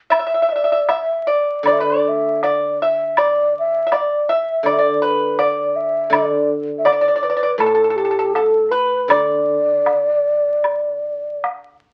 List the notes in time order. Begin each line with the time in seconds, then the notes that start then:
0.10 E5, high woodblock
0.19 E5
0.27 E5
0.34 E5
0.42 E5
0.49 D5 E5
0.56 E5
0.64 E5
0.72 E5
0.89 E5, high woodblock, low woodblock
1.27 D5
1.63 D3 D5, high woodblock
1.69 D5 E5
1.80 D5
2.08 E5
2.43 D5, low woodblock
2.82 E5
3.17 D5, high woodblock
3.59 E5
3.87 E5
3.92 D5, high woodblock, low woodblock
4.29 E5
4.63 D3 D5, high woodblock
4.68 D5
4.72 E5
4.79 D5
5.02 B4
5.39 D5, low woodblock
5.76 E5
6.10 D3 D5, high woodblock
6.14 D5
6.78 E5
6.85 D5, high woodblock, low woodblock
6.92 D5
7.01 D5
7.08 D5
7.16 D5
7.23 B4 D5
7.30 D5
7.37 D5
7.43 D5
7.58 A2 A4, high woodblock
7.66 A4
7.75 A4
7.84 A4
7.90 A4
7.96 G4 A4
8.05 A4
8.11 A4
8.19 A4
8.34 A4, low woodblock
8.71 B4
9.08 D3 D5, high woodblock
9.86 high woodblock, low woodblock
10.64 high woodblock
11.44 low woodblock